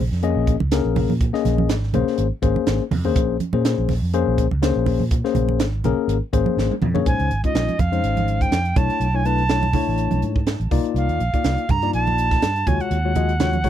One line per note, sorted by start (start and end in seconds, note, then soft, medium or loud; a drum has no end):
0.11 0.32 F2 medium
0.11 snare soft
0.23 0.55 A#3 medium
0.23 0.55 C#4 medium
0.23 0.55 G#4 medium
0.23 0.56 D#5 medium
0.23 closed hi-hat medium
0.36 0.57 A#1 medium
0.47 kick medium
0.47 closed hi-hat medium
0.60 0.82 C#2 medium
0.60 high conga medium
0.72 1.12 A#3 medium
0.72 1.12 C#4 medium
0.72 1.12 G#4 medium
0.72 1.12 A#4 medium
0.72 snare loud
0.72 closed hi-hat medium
0.85 1.06 A#1 medium
0.96 open hi-hat medium
0.96 high conga medium
0.96 low conga medium
1.09 1.30 A#2 medium
1.09 high conga medium
1.21 kick medium
1.21 closed hi-hat medium
1.33 1.72 A#3 medium
1.33 1.72 C#4 medium
1.33 1.73 G#4 medium
1.33 1.73 D#5 medium
1.33 snare soft
1.45 1.69 A#1 medium
1.45 snare soft
1.45 closed hi-hat medium
1.45 high conga medium
1.58 high conga medium
1.69 1.90 G#1 medium
1.69 snare loud
1.69 closed hi-hat medium
1.83 snare soft
1.93 2.05 A#1 medium
1.93 2.26 A#3 medium
1.93 2.26 C#4 medium
1.93 2.26 G#4 medium
1.93 2.27 C5 loud
1.93 closed hi-hat medium
1.93 low conga medium
2.07 snare soft
2.18 2.30 G#1 medium
2.18 closed hi-hat medium
2.42 2.54 G#1 medium
2.42 2.83 A#3 medium
2.42 2.83 C#4 medium
2.42 2.83 G#4 medium
2.42 2.83 C5 medium
2.42 kick medium
2.42 closed hi-hat medium
2.56 high conga medium
2.67 2.79 G#1 medium
2.67 snare loud
2.67 closed hi-hat medium
2.80 muted fingered electric bass stroke soft
2.91 3.16 F2 medium
2.91 open hi-hat medium
2.91 high conga medium
2.91 low conga medium
3.05 3.36 A#3 medium
3.05 3.36 C#4 medium
3.05 3.36 G#4 medium
3.05 3.36 C5 medium
3.05 high conga medium
3.16 3.37 A#1 medium
3.16 kick loud
3.16 closed hi-hat medium
3.40 closed hi-hat medium
3.40 high conga medium
3.53 3.74 A#2 medium
3.53 3.92 A#3 medium
3.53 3.92 C#4 medium
3.53 3.92 G#4 medium
3.53 3.92 C5 medium
3.53 high conga medium
3.65 snare loud
3.65 closed hi-hat medium
3.78 3.99 A#1 medium
3.89 snare soft
3.89 open hi-hat medium
3.89 low conga medium
4.02 4.23 F2 medium
4.14 4.46 A#3 medium
4.14 4.46 C#4 medium
4.14 4.46 G#4 medium
4.14 4.46 C5 loud
4.14 closed hi-hat medium
4.27 4.48 A#1 medium
4.38 kick medium
4.38 closed hi-hat medium
4.51 4.72 C#2 medium
4.51 high conga medium
4.62 5.03 A#3 medium
4.62 5.03 C#4 medium
4.62 5.03 G#4 medium
4.62 5.03 C5 medium
4.62 snare loud
4.62 closed hi-hat medium
4.76 4.97 A#1 medium
4.86 open hi-hat medium
4.86 high conga medium
4.86 low conga medium
4.99 5.21 A#2 medium
4.99 high conga medium
5.11 kick medium
5.11 closed hi-hat medium
5.24 5.63 A#3 medium
5.24 5.63 C#4 medium
5.24 5.63 G#4 medium
5.24 5.63 C5 medium
5.24 snare soft
5.35 5.60 A#1 medium
5.35 closed hi-hat medium
5.35 high conga medium
5.35 low conga medium
5.49 high conga medium
5.60 5.81 G#1 medium
5.60 snare loud
5.60 closed hi-hat medium
5.84 5.96 A#1 medium
5.84 6.17 A#3 medium
5.84 6.17 C#4 medium
5.84 6.17 G#4 medium
5.84 6.17 A#4 loud
5.84 closed hi-hat medium
5.84 low conga medium
6.08 6.19 G#1 medium
6.08 closed hi-hat medium
6.33 6.45 G#1 medium
6.33 6.73 A#3 medium
6.33 6.73 C#4 medium
6.33 6.73 G#4 medium
6.33 6.73 C5 medium
6.33 kick medium
6.33 closed hi-hat medium
6.46 high conga medium
6.57 6.68 G#1 medium
6.57 snare medium
6.71 muted fingered electric bass stroke soft
6.71 high tom medium
6.82 6.93 F2 medium
6.82 mid tom medium
6.82 high conga medium
6.94 7.06 A#3 medium
6.94 7.05 C#4 medium
6.94 7.06 G#4 medium
6.94 7.06 C#5 medium
6.94 floor tom medium
6.94 high conga medium
7.06 7.17 A#1 medium
7.06 7.30 G#3 medium
7.06 7.30 C#4 medium
7.06 7.30 D#4 soft
7.06 7.30 C5 medium
7.06 7.41 G#5 medium
7.06 kick medium
7.06 closed hi-hat medium
7.19 7.29 C#2 medium
7.19 closed hi-hat soft
7.30 7.42 G#1 medium
7.30 closed hi-hat soft
7.44 7.75 G#3 medium
7.44 7.75 C#4 soft
7.44 7.75 D#4 soft
7.44 7.75 F4 medium
7.44 7.81 D#5 medium
7.44 kick medium
7.44 closed hi-hat soft
7.55 7.66 A#1 medium
7.55 snare loud
7.55 closed hi-hat medium
7.68 closed hi-hat soft
7.68 high conga medium
7.79 8.00 F2 medium
7.79 8.43 F5 medium
7.79 kick medium
7.79 closed hi-hat soft
7.79 low conga medium
7.92 8.54 G#3 medium
7.92 8.54 C#4 medium
7.92 8.55 D#4 medium
7.92 8.54 C5 medium
7.92 closed hi-hat soft
8.03 8.45 G#1 medium
8.03 closed hi-hat medium
8.17 closed hi-hat soft
8.17 high conga medium
8.28 closed hi-hat medium
8.41 8.79 G5 medium
8.41 kick medium
8.41 closed hi-hat soft
8.51 8.73 F2 medium
8.51 snare loud
8.51 closed hi-hat medium
8.65 closed hi-hat soft
8.76 8.88 B1 medium
8.76 9.06 A3 medium
8.76 9.06 D4 medium
8.76 9.06 E4 medium
8.76 9.06 C#5 medium
8.76 9.17 A5 medium
8.76 kick medium
8.76 closed hi-hat medium
8.76 low conga medium
8.90 closed hi-hat soft
9.00 9.74 B1 medium
9.00 closed hi-hat medium
9.14 9.21 A3 medium
9.14 9.21 D4 medium
9.14 9.22 E4 medium
9.14 9.22 C#5 medium
9.14 9.27 G#5 medium
9.25 9.42 A3 medium
9.25 9.42 D4 medium
9.25 9.42 E4 medium
9.25 9.42 B4 medium
9.25 10.23 A5 medium
9.25 closed hi-hat medium
9.38 closed hi-hat soft
9.49 9.66 A3 medium
9.49 9.66 D4 soft
9.49 9.66 E4 medium
9.49 9.66 C#5 medium
9.49 snare loud
9.49 closed hi-hat medium
9.62 closed hi-hat soft
9.62 high conga medium
9.73 10.38 A3 medium
9.73 10.38 D4 medium
9.73 10.38 E4 medium
9.73 10.38 C#5 medium
9.73 kick medium
9.73 open hi-hat medium
9.73 low conga medium
9.87 10.08 A1 medium
9.98 closed hi-hat medium
10.11 10.21 B1 medium
10.11 closed hi-hat soft
10.11 high conga medium
10.22 10.55 G#2 medium
10.22 closed hi-hat soft
10.36 kick medium
10.47 snare medium
10.47 closed hi-hat medium
10.60 10.70 A1 medium
10.60 closed hi-hat soft
10.71 10.83 C2 medium
10.71 11.20 A#3 medium
10.71 11.20 D#4 medium
10.71 11.20 F4 medium
10.71 11.20 D5 medium
10.71 kick medium
10.71 open hi-hat medium
10.85 closed hi-hat soft
10.94 11.06 C2 medium
10.94 11.72 F5 medium
10.94 closed hi-hat medium
11.08 11.18 D#2 medium
11.08 closed hi-hat soft
11.20 11.31 A#1 medium
11.20 closed hi-hat soft
11.34 11.65 A#3 medium
11.34 11.65 D#4 soft
11.34 11.65 F4 medium
11.34 11.65 D5 medium
11.34 muted fingered electric bass stroke soft
11.34 kick medium
11.34 closed hi-hat soft
11.44 11.56 C2 medium
11.44 snare loud
11.44 closed hi-hat medium
11.58 closed hi-hat soft
11.69 11.90 G2 medium
11.69 11.93 A#5 loud
11.69 kick medium
11.69 closed hi-hat medium
11.69 low conga medium
11.82 12.44 A#3 medium
11.82 12.45 D#4 medium
11.82 12.44 F4 medium
11.82 12.45 D5 medium
11.82 closed hi-hat soft
11.93 12.35 A#1 medium
11.93 12.68 A5 medium
11.93 closed hi-hat medium
12.07 closed hi-hat soft
12.07 high conga medium
12.18 closed hi-hat medium
12.31 kick medium
12.31 snare soft
12.31 closed hi-hat soft
12.42 12.63 G2 medium
12.42 snare loud
12.42 closed hi-hat medium
12.56 closed hi-hat soft
12.66 12.78 D#2 medium
12.66 12.97 G#3 medium
12.66 12.97 F4 medium
12.66 12.97 F#4 medium
12.66 12.97 C#5 medium
12.66 12.82 G#5 medium
12.66 kick medium
12.66 closed hi-hat medium
12.66 low conga medium
12.80 13.70 F#5 medium
12.80 closed hi-hat soft
12.91 13.65 D#2 medium
12.91 closed hi-hat medium
13.05 13.12 G#3 medium
13.05 13.12 F4 medium
13.05 13.12 F#4 medium
13.05 13.12 C#5 medium
13.15 13.32 G#3 medium
13.15 13.32 F4 medium
13.15 13.32 F#4 medium
13.15 13.32 D#5 medium
13.15 closed hi-hat medium
13.15 high conga soft
13.15 low conga medium
13.29 closed hi-hat soft
13.40 13.56 G#3 medium
13.40 13.56 F4 medium
13.40 13.56 F#4 medium
13.40 13.56 C#5 medium
13.40 snare medium
13.40 closed hi-hat medium
13.40 low conga medium
13.53 closed hi-hat soft
13.53 high conga medium
13.64 13.70 G#3 medium
13.64 13.70 D#4 medium
13.64 13.70 F#4 medium
13.64 13.70 C#5 medium
13.64 kick medium
13.64 open hi-hat medium
13.64 low conga medium